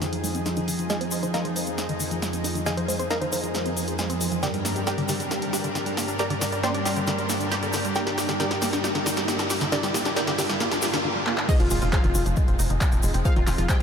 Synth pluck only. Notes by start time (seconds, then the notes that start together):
0.90 G#4 D#5 F5 G#5
1.01 C5
1.12 C5
1.23 C5
1.34 A#4 D#5 F5 A#5
1.45 C5
1.56 C5
2.66 G#4 D#5 F5 G#5
2.77 C5
2.88 C5
2.99 C5
3.10 A#4 D#5 F5 A#5
3.21 C5
3.32 C5
4.43 G4 A#4 D5 G5
4.54 G4
4.65 G4
4.76 G4
4.87 G4 A#4 D5 G5
4.98 G4
5.09 G4
6.19 A#4 D5 G5 A#5
6.30 D5
6.41 D5
6.52 D5
6.64 C5 D5 G5 C6
6.75 D5
6.85 D5
7.96 G4 A#4 D5 G5
8.07 G4
8.18 G4
8.29 G4
8.40 G4 A#4 D5 G5
8.51 G4
8.62 G4
9.72 D4 G4 A#4 D5
9.83 G4
9.94 G4
10.06 G4
10.17 D4 G4 A#4 D5
10.28 G4
10.39 G4
11.49 D#4 G#4 C5 D#5
11.60 F4
11.71 F4
11.82 F4
11.93 F4 G#4 C5 F5
12.04 F4
12.15 F4
13.25 F4 G#4 C5 F5
13.36 F4
13.47 F4
13.58 F4
13.69 G4 C5 D#5 G5